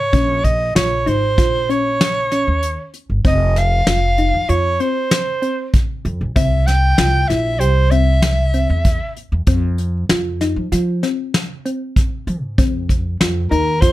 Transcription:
Already playing: upright bass G#2, soprano saxophone C#5
0.13 upright bass A#1, synth arpeggio sound C#4, kick, closed hi-hat
0.44 soprano saxophone D#5, kick, closed hi-hat
0.75 upright bass A#1, synth arpeggio sound F4, soprano saxophone C#5, snare, closed hi-hat
1.06 upright bass G#1, synth arpeggio sound D#4, soprano saxophone C5, closed hi-hat
1.38 upright bass A#1, synth arpeggio sound F4, kick, snare, closed hi-hat
1.69 synth arpeggio sound C#4, soprano saxophone C#5, closed hi-hat
2.01 snare, closed hi-hat
2.31 synth arpeggio sound C#4, snare, closed hi-hat
2.47 upright bass D#2
2.63 closed hi-hat
2.94 closed hi-hat
3.10 upright bass G1
3.25 upright bass F1, synth arpeggio sound C4, soprano saxophone D#5, kick, closed hi-hat
3.56 soprano saxophone F5, snare, closed hi-hat
3.87 upright bass F1, synth arpeggio sound F4, snare, closed hi-hat
4.18 synth arpeggio sound D#4, closed hi-hat
4.34 upright bass F2
4.49 upright bass F2, synth arpeggio sound F4, soprano saxophone C#5, closed hi-hat
4.80 synth arpeggio sound C4, soprano saxophone C5, closed hi-hat
5.11 snare, closed hi-hat
5.42 synth arpeggio sound C4, closed hi-hat
5.74 kick, closed hi-hat
6.05 upright bass F2, closed hi-hat
6.21 upright bass A#1
6.36 upright bass C2, synth arpeggio sound C4, soprano saxophone E5, kick, closed hi-hat
6.67 soprano saxophone G5, snare, closed hi-hat
6.98 upright bass C2, synth arpeggio sound F4, snare, closed hi-hat
7.28 upright bass A#1, synth arpeggio sound E4, soprano saxophone E5, snare, closed hi-hat
7.60 upright bass C2, synth arpeggio sound G4, soprano saxophone C5, closed hi-hat
7.91 synth arpeggio sound C4, soprano saxophone E5, closed hi-hat
8.22 snare, closed hi-hat
8.53 synth arpeggio sound C4, closed hi-hat
8.70 upright bass E2
8.85 kick, closed hi-hat
9.16 closed hi-hat
9.32 upright bass E2
9.47 upright bass F2, synth arpeggio sound C4, kick, closed hi-hat
9.78 closed hi-hat
10.09 upright bass F2, synth arpeggio sound F4, snare, closed hi-hat
10.41 synth arpeggio sound D#4, snare, closed hi-hat
10.56 upright bass F3
10.72 upright bass F3, synth arpeggio sound F4, snare, closed hi-hat
11.03 synth arpeggio sound C4, snare, closed hi-hat
11.34 snare, closed hi-hat
11.66 synth arpeggio sound C4, closed hi-hat
11.96 kick, closed hi-hat
12.27 upright bass F3, closed hi-hat
12.43 upright bass G#2
12.58 upright bass F2, synth arpeggio sound C4, kick, closed hi-hat
12.89 kick, closed hi-hat
13.21 upright bass F2, synth arpeggio sound F4, snare, closed hi-hat
13.51 upright bass D#2, synth arpeggio sound D#4, soprano saxophone A#4, closed hi-hat
13.81 upright bass F2, synth arpeggio sound F4, soprano saxophone C5, kick, closed hi-hat

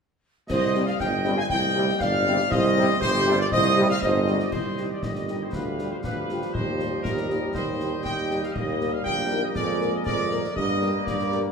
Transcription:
0.49 tuba C2, flute section C5, trumpet section D#5, woodwind section D#5, concert bass drum, snare, crash
0.74 trombone section C3 G3, french horn section G3 C4 G4, snare
0.86 flute section D5, woodwind section F5, trumpet section F5, snare
0.99 tuba G1, flute section D#5, trumpet section G5, woodwind section G5, concert bass drum, snare
1.23 trombone section C3 G3, french horn section G3 C4 G4, snare
1.37 flute section F5, woodwind section G#5, trumpet section G#5
1.48 tuba C2, flute section D#5, woodwind section G5, trumpet section G5, concert bass drum, snare
1.75 trombone section C3 G3, french horn section G3 C4 G4
2.00 tuba G1, flute section D5, trumpet section F5, woodwind section F5, concert bass drum, snare
2.25 trombone section C3 G3, french horn section G3 C4 G4, snare
2.38 snare
2.50 tuba C2, flute section C5, woodwind section D#5, trumpet section D#5, concert bass drum, snare, crash
2.76 trombone section C3 G3, french horn section G3 C4 G4, snare
2.89 snare
3.00 tuba G1, flute section G4, woodwind section C5, trumpet section C5, concert bass drum, snare
3.26 trombone section C3 G3, french horn section G3 C4 G4, snare
3.37 flute section A#4, woodwind section D5, trumpet section D5
3.51 tuba C2, flute section C5, woodwind section D#5, trumpet section D#5, concert bass drum, snare
3.76 trombone section C3 G3, french horn section G3 C4 G4
3.89 flute section D5, woodwind section F5, trumpet section F5
4.01 tuba G1, flute section C5, trumpet section D#5, woodwind section D#5, concert bass drum, snare
4.27 trombone section C3 G3, french horn section G3 C4 G4, snare
4.40 trumpet section D5, snare
4.51 tuba C2, trombone section D#3 G3, woodwind section G4 D#5, trumpet section C5, concert bass drum, crash
4.77 french horn section G3 D#4 G4, snare
4.92 trumpet section D5
5.03 tuba G1, woodwind section G4 D#5, trumpet section D#5, concert bass drum, snare
5.15 snare
5.28 french horn section G3 D#4 G4, snare
5.43 trumpet section C5
5.52 tuba D2, trombone section F3, woodwind section G4 F5, trumpet section B4, concert bass drum, snare
5.79 french horn section G3 F4 G4, snare
5.91 trumpet section C5
6.03 tuba D2, woodwind section G4 F5, trumpet section B4, concert bass drum, snare
6.29 french horn section G3 F4 G4, snare
6.42 snare
6.53 tuba D#2, trombone section G3, woodwind section G4 D#5, trumpet section C5, concert bass drum
6.80 french horn section G3 D#4 G4, snare
7.03 tuba D#2, trumpet section A#4, concert bass drum, snare
7.17 snare
7.29 french horn section G3 D#4 G4, snare
7.54 tuba D#2, trombone section D#3, woodwind section G4 D#5, trumpet section C5, concert bass drum, snare
7.80 french horn section G3 D#4 G4, snare
8.04 tuba D#2, woodwind section G4 D#5, trumpet section G5, concert bass drum, snare
8.30 french horn section G3 D#4 G4, snare
8.43 trumpet section F5, snare
8.53 tuba D#2, trombone section G3 A#3, woodwind section G4 A#4, trumpet section D#5, concert bass drum, crash
8.80 french horn section G3 D#4 A#4, snare
8.93 trumpet section F5
9.04 tuba A#1, woodwind section G4 A#4, trumpet section G5, concert bass drum, snare
9.18 snare
9.31 french horn section G3 D#4 A#4, snare
9.44 trumpet section D#5
9.55 tuba F2, trombone section G#3, woodwind section G#4 A#4, trumpet section D5, concert bass drum, snare
9.81 french horn section G#3 A#3 A#4, snare
9.95 trumpet section D#5
10.05 tuba F2, woodwind section G#4 A#4, trumpet section D5, concert bass drum, snare
10.31 french horn section G#3 A#3 A#4, snare
10.44 snare
10.56 tuba G2, trombone section G3 A#3, woodwind section G4 A#4, trumpet section D#5, concert bass drum
10.81 french horn section G3 A#3 A#4, snare
11.05 tuba G2, trumpet section D5, concert bass drum, snare
11.19 snare
11.32 french horn section G3 A#3 A#4, snare

